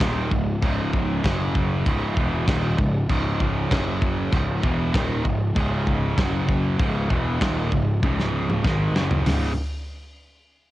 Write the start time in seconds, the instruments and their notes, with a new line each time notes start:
0.00 picked electric bass D#1, distorted electric guitar D#2 A#2 D#3, kick, snare, china
0.31 picked electric bass C#1, distorted electric guitar C#2 G#2, kick
0.61 picked electric bass C#1, distorted electric guitar C#2 G#2 C#3, kick, china
0.93 kick
1.24 picked electric bass F#1, distorted electric guitar F#2 C#3 F#3, kick, snare, china
1.55 kick
1.86 picked electric bass C#1, distorted electric guitar C#2 G#2 C#3, kick, china
2.17 picked electric bass E1, distorted electric guitar E2 B2 E3, kick
2.47 picked electric bass D#1, distorted electric guitar D#2 A#2 D#3, kick, snare, china
2.78 picked electric bass C#1, distorted electric guitar C#2 G#2, kick
3.09 picked electric bass C#1, distorted electric guitar C#2 G#2 C#3, kick, china
3.40 kick
3.70 picked electric bass F#1, distorted electric guitar F#2 C#3 F#3, kick, snare, china
4.02 kick
4.32 picked electric bass C#1, distorted electric guitar C#2 G#2 C#3, kick, china
4.63 picked electric bass E1, distorted electric guitar E2 B2 E3, kick
4.94 picked electric bass D#1, distorted electric guitar D#2 A#2 D#3, kick, snare, china
5.24 picked electric bass C#1, distorted electric guitar C#2 G#2, kick
5.55 picked electric bass C#1, distorted electric guitar C#2 G#2 C#3, kick, china
5.87 kick
6.17 picked electric bass F#1, distorted electric guitar F#2 C#3 F#3, kick, snare, china
6.49 kick
6.78 picked electric bass C#1, distorted electric guitar C#2 G#2 C#3, kick, china
7.09 picked electric bass E1, distorted electric guitar E2 B2 E3, kick
7.40 picked electric bass D#1, distorted electric guitar D#2 A#2 D#3, kick, snare, china
7.71 picked electric bass C#1, distorted electric guitar C#2 G#2, kick
8.02 picked electric bass C#1, distorted electric guitar C#2 G#2 C#3, kick, high tom
8.19 snare
8.50 mid tom
8.64 picked electric bass G#1, distorted electric guitar G#2 D#3 G#3, kick, snare
8.94 picked electric bass F#1, distorted electric guitar F#2 C#3 F#3, snare
9.11 floor tom
9.24 picked electric bass C#1, distorted electric guitar C#2 G#2 C#3, snare, floor tom, open hi-hat